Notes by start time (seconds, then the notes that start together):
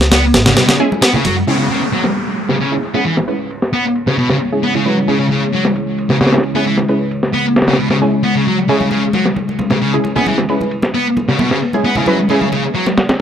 Already playing: C#2 G#3 C#4 E4 B4
0.01 snare
0.12 B3, snare, ride, muted conga
0.34 G#1, snare, ride, muted conga, high conga
0.46 C#3, snare, ride, low conga
0.57 B2, snare, ride, high conga, low conga
0.69 C#3, snare, ride, muted conga
0.80 G#3 C#4 E4 G#4
0.92 muted conga
1.02 B3, snare, ride
1.14 C#3, low conga
1.25 F#2 F#3, ride, muted conga, high conga
1.47 C#3 G#3 C#4 E4 G#4 C#5 G#5, ride, downlifter
1.59 C#3
1.70 C#3, ride
1.92 F#3, ride
2.04 snare
2.15 ride
2.38 ride
2.49 C#3, snare
2.60 C#3, ride
2.72 G#3 C#4 E4 G#4
2.83 ride
2.94 G#3 B3 C#4 E4 G#4, ride
3.05 E3, ride
3.17 snare
3.28 G#3 C#4 E4 B4, ride
3.51 ride
3.62 snare
3.73 B3, ride
3.95 ride
4.07 C#3, snare
4.18 B2, ride
4.30 C#3, snare
4.40 open hi-hat
4.52 G#3 C#4 E4 G#4
4.63 B3, ride
4.75 C#3 G#3 C#4 E4 G#4
4.85 F#3 G#3 C#4 E4 B4, ride
5.08 C#3 G#3 C#4 E4 G#4, ride
5.20 C#3
5.31 C#3, ride
5.53 F#3, ride
5.65 snare
5.76 ride
5.98 ride
6.10 C#3, snare
6.21 C#3, snare, ride
6.27 snare, ride
6.32 G#3 C#4 E4 G#4, snare, ride
6.38 snare, ride
6.43 ride
6.55 G#3 B3 C#4 E4 G#4, ride
6.66 E3, ride
6.78 snare
6.88 G#3 C#4 E4 B4, ride
7.11 ride
7.23 snare
7.33 B3, ride
7.56 snare, ride
7.62 snare, ride
7.68 C#3, snare, ride
7.73 snare, ride
7.78 B2, ride
7.90 C#3, snare
8.01 G#3 C#4 E4 G#4, open hi-hat
8.23 B3, ride
8.35 C#3
8.46 F#3, ride
8.68 C#3 G#3 C#4 E4 G#4 B4, ride
8.80 C#3, high conga
8.91 C#3, ride, muted conga
9.13 F#3, ride, muted conga
9.25 snare
9.36 ride, high conga
9.49 muted conga
9.59 ride, high conga, low conga
9.70 C#3, snare, muted conga
9.81 C#3, ride
9.93 G#3 C#4 E4 G#4
10.04 ride, muted conga
10.16 G#3 B3 C#4 E4 G#4, ride, low conga
10.26 E3, ride, muted conga, high conga
10.38 snare
10.49 G#3 C#4 E4 B4, ride
10.61 muted conga, high conga
10.71 ride
10.82 snare, muted conga
10.94 B3, ride
11.17 ride, muted conga, high conga
11.29 C#3, snare
11.39 B2, ride, muted conga, high conga, low conga
11.51 C#3, snare
11.62 open hi-hat
11.73 G#3 C#4 E4 G#4, muted conga
11.85 B3, ride
11.95 C#3 G#3 C#4 E4 G#4, muted conga, low conga
12.06 F#3 G#3 C#4 E4 B4, ride, high conga
12.29 C#3 G#3 C#4 E4 G#4, ride, muted conga
12.41 C#3, high conga
12.52 C#3, ride, muted conga
12.75 F#3, ride
12.86 snare, muted conga
12.98 snare, ride, high conga
13.09 snare, ride, muted conga